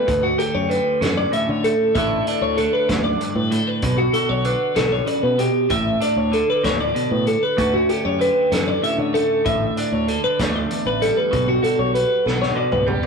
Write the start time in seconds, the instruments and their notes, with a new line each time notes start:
Already playing: clean electric guitar A3 D4 B4
0.07 clean electric guitar D2, fingered electric bass D2, kick, closed hi-hat
0.23 clean electric guitar F#4
0.38 clean electric guitar G4 A4, closed hi-hat
0.55 fingered electric bass F#2, clean electric guitar C#5
0.69 clean electric guitar D3 B4, closed hi-hat
1.01 fingered electric bass F#2, clean electric guitar C#4 A4, snare, closed hi-hat
1.17 clean electric guitar D5
1.32 clean electric guitar A2 E5, closed hi-hat
1.49 fingered electric bass D3, clean electric guitar C#5
1.64 clean electric guitar A3 A4, closed hi-hat
1.95 fingered electric bass A1, clean electric guitar A2 D3 A3 E5, kick, closed hi-hat
1.99 clean electric guitar D4
2.26 clean electric guitar D4 D5, closed hi-hat
2.41 fingered electric bass D2, clean electric guitar C#5
2.57 clean electric guitar D3 A4, closed hi-hat
2.73 clean electric guitar B4
2.89 fingered electric bass D2, clean electric guitar F#2 C#5, kick, snare, closed hi-hat
3.04 clean electric guitar D5
3.20 clean electric guitar G2, closed hi-hat
3.36 fingered electric bass A2, clean electric guitar B4
3.51 clean electric guitar A2 A4, closed hi-hat
3.67 clean electric guitar B4
3.82 fingered electric bass B1, clean electric guitar B2, kick, closed hi-hat
3.98 clean electric guitar F#4
4.13 clean electric guitar F#4 A4, closed hi-hat
4.29 fingered electric bass B1, clean electric guitar C#5
4.45 clean electric guitar D3 B4, closed hi-hat
4.75 fingered electric bass B1, clean electric guitar D3 A4, snare, closed hi-hat
4.92 clean electric guitar C#5
5.06 clean electric guitar C#3 D5, closed hi-hat
5.23 fingered electric bass B2, clean electric guitar B4
5.38 clean electric guitar B2 G4, closed hi-hat
5.70 fingered electric bass A1, clean electric guitar A2 E5, kick, closed hi-hat
6.01 clean electric guitar D4 D5, closed hi-hat
6.16 fingered electric bass D2, clean electric guitar C#5
6.32 clean electric guitar D3 A4, closed hi-hat
6.50 clean electric guitar B4
6.64 fingered electric bass D2, clean electric guitar A2 C#5, kick, snare, closed hi-hat
6.80 clean electric guitar D5
6.95 clean electric guitar B2, closed hi-hat
7.11 fingered electric bass A2, clean electric guitar B4
7.27 clean electric guitar A4, closed hi-hat
7.43 clean electric guitar B4
7.57 clean electric guitar D2 D3 A3 C#4 F#4, fingered electric bass D2, kick, closed hi-hat
7.74 clean electric guitar F#4
7.89 clean electric guitar G4 A4, closed hi-hat
8.05 fingered electric bass F#2, clean electric guitar C#5
8.19 clean electric guitar D3 B4, closed hi-hat
8.52 fingered electric bass F#2, clean electric guitar C#4 A4, snare, closed hi-hat
8.68 clean electric guitar D5
8.82 clean electric guitar A2 E5, closed hi-hat
8.98 fingered electric bass D3, clean electric guitar C#5
9.14 clean electric guitar A3 A4, closed hi-hat
9.45 fingered electric bass A1, clean electric guitar A2 E5, kick, closed hi-hat
9.77 clean electric guitar D4 D5, closed hi-hat
9.92 fingered electric bass D2, clean electric guitar C#5
10.08 clean electric guitar D3 A4, closed hi-hat
10.24 clean electric guitar B4
10.39 fingered electric bass D2, clean electric guitar A3 C#5, kick, snare, closed hi-hat
10.56 clean electric guitar D5
10.70 clean electric guitar E2, closed hi-hat
10.86 fingered electric bass A1, clean electric guitar B4
11.02 clean electric guitar G3 A4, closed hi-hat
11.17 clean electric guitar B4
11.31 fingered electric bass B1, clean electric guitar B2, kick, closed hi-hat
11.48 clean electric guitar F#4
11.63 clean electric guitar F#4 A4, closed hi-hat
11.79 fingered electric bass B1, clean electric guitar C#5
11.95 clean electric guitar B4, closed hi-hat
12.26 fingered electric bass B1, clean electric guitar B3 A4, snare
12.42 clean electric guitar C#5, snare
12.55 clean electric guitar B2 D5
12.72 fingered electric bass C#2, clean electric guitar B4, mid tom
12.87 clean electric guitar G3 G4, mid tom
13.03 floor tom